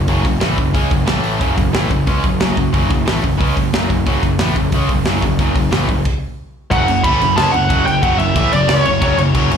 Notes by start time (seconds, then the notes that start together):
0.08 F#1 F#2 C#3 F#3, kick, open hi-hat
0.25 F#1 F#2 C#3, kick, open hi-hat
0.40 A1 A2 E3 A3, snare, open hi-hat
0.57 F#1 F#2 C#3, kick, open hi-hat
0.74 C#2 C#3 G#3 C#4, kick, open hi-hat
0.91 F#1 F#2 C#3, kick, open hi-hat
1.06 A1 A2 E3 A3, snare, open hi-hat
1.24 open hi-hat
1.39 F#1 F#2 C#3 F#3, kick, open hi-hat
1.58 F#1 F#2 C#3, kick, open hi-hat
1.73 A1 A2 E3 A3, snare, open hi-hat
1.90 F#1 F#2 C#3, kick, open hi-hat
2.07 C#2 C#3 G#3 C#4, kick, open hi-hat
2.24 F#1 F#2 C#3, kick, open hi-hat
2.40 F#1 F#2 C#3 F#3, snare, open hi-hat
2.57 F#1 F#2 C#3, kick, open hi-hat
2.73 F#1 F#2 C#3 F#3, kick, open hi-hat
2.90 F#1 F#2 C#3, kick, open hi-hat
3.06 A1 A2 E3 A3, snare, open hi-hat
3.23 F#1 F#2 C#3, kick, open hi-hat
3.38 C#2 C#3 G#3 C#4, kick, open hi-hat
3.56 F#1 F#2 C#3, kick, open hi-hat
3.74 F#1 F#2 C#3 F#3, snare, open hi-hat
3.89 F#1 F#2 C#3, kick, open hi-hat
4.06 F#1 F#2 C#3 F#3, kick, open hi-hat
4.23 F#1 F#2 C#3, kick, open hi-hat
4.39 A1 A2 E3 A3, snare, open hi-hat
4.56 F#1 F#2 C#3, kick, open hi-hat
4.72 C#2 C#3 G#3 C#4, kick, open hi-hat
4.89 F#1 F#2 C#3, kick, open hi-hat
5.05 F#1 F#2 C#3 F#3, snare, open hi-hat
5.22 F#1 F#2 C#3, kick, open hi-hat
5.39 F#1 F#2 C#3 F#3, kick, open hi-hat
5.56 F#1 F#2 C#3, kick, open hi-hat
5.71 A1 A2 E3 A3, snare, open hi-hat
5.88 F#1 F#2 C#3, kick, open hi-hat
6.05 kick, crash
6.70 F#1 F#2 C#3 F#3 F#5, kick, crash
6.88 F#1 F#2 C#3, crash
7.04 A1 A2 E3 A3 B5, kick, crash
7.21 F#1 F#2 C#3, crash
7.36 C#2 C#3 G#3 C#4 A5, snare, crash
7.52 F#1 F#2 C#3 F#5, crash
7.69 F#1 F#2 C#3 F#3, kick, crash
7.86 F#1 F#2 C#3 G5, crash
8.01 F#1 F#2 C#3 F#3 F#5, kick, crash
8.18 F#1 F#2 C#3 E5, crash
8.35 A1 A2 E3 A3, kick, crash
8.51 F#1 F#2 C#3 D5, crash
8.68 C#2 C#3 G#3 C#4 D5, snare, crash
8.79 C#5
8.84 F#1 F#2 C#3, crash
9.01 F#1 F#2 C#3 F#3, kick, crash
9.18 F#1 F#2 C#3, crash
9.34 F#1 F#2 C#3 F#3, kick, crash
9.51 F#1 F#2 C#3, crash